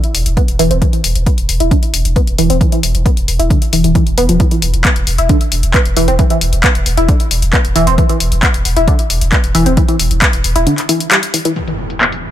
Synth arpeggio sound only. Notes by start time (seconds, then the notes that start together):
0.37 B3
0.59 E3
0.71 C4
0.82 E3
0.93 E3
1.27 B3
1.60 E4
1.71 D3
2.16 B3
2.39 E3
2.50 C4
2.61 E3
2.72 E3
3.06 B3
3.39 E4
3.50 D3
3.73 E3
3.84 E3
3.95 E3
4.18 B3
4.29 F3
4.40 E3
4.51 E3
4.85 B3
5.18 E4
5.30 D3
5.74 B3
5.97 E3
6.08 C4
6.19 E3
6.30 E3
6.64 B3
6.98 E4
7.09 D3
7.53 B3
7.76 E3
7.87 C4
7.98 E3
8.09 E3
8.43 B3
8.77 E4
8.88 D3
9.32 B3
9.55 E3
9.66 C4
9.77 E3
9.89 E3
10.22 B3
10.56 E4
10.67 D3
10.89 E3
11.12 G3
11.34 E3
11.45 E3
11.56 E3
11.68 E3
12.01 B3